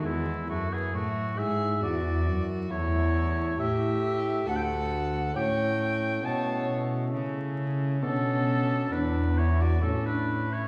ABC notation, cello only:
X:1
M:3/4
L:1/8
Q:1/4=68
K:Emix
V:1 name="Cello" clef=bass
E,, F,, A,, G,, E,, F,, | [K:Amix] E,,2 A,,2 D,,2 | A,,2 B,,2 C,2 | B,,2 E,,2 A,,2 |]